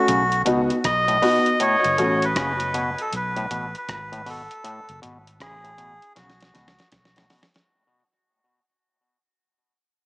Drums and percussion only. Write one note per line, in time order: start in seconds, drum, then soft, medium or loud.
0.08 closed hi-hat medium
0.32 closed hi-hat soft
0.46 closed hi-hat medium
0.70 closed hi-hat soft
0.84 kick loud
0.84 cross-stick loud
0.84 closed hi-hat medium
1.08 closed hi-hat medium
1.23 open hi-hat medium
1.46 closed hi-hat medium
1.60 closed hi-hat medium
1.84 closed hi-hat medium
1.98 closed hi-hat medium
2.22 closed hi-hat medium
2.36 kick loud
2.36 cross-stick loud
2.36 closed hi-hat medium
2.60 closed hi-hat medium
2.74 closed hi-hat medium
2.98 closed hi-hat medium
3.13 closed hi-hat medium
3.36 closed hi-hat soft
3.51 closed hi-hat medium
3.75 closed hi-hat soft
3.89 kick loud
3.89 cross-stick loud
3.89 closed hi-hat medium
4.13 closed hi-hat medium
4.26 open hi-hat medium
4.51 closed hi-hat medium
4.65 closed hi-hat medium
4.89 closed hi-hat medium
5.03 closed hi-hat medium
5.27 closed hi-hat medium
5.40 kick loud
5.40 cross-stick loud
5.40 closed hi-hat medium
5.65 closed hi-hat medium
5.78 closed hi-hat medium
6.02 closed hi-hat soft
6.16 snare medium
6.16 closed hi-hat medium
6.30 snare medium
6.40 snare medium
6.40 closed hi-hat soft
6.55 snare medium
6.55 closed hi-hat medium
6.68 snare medium
6.79 snare medium
6.79 closed hi-hat soft
6.92 kick loud
6.92 snare medium
6.92 closed hi-hat medium
7.05 snare medium
7.16 snare medium
7.16 closed hi-hat medium
7.30 snare medium
7.30 open hi-hat medium
7.43 snare loud
7.54 snare loud
7.54 closed hi-hat soft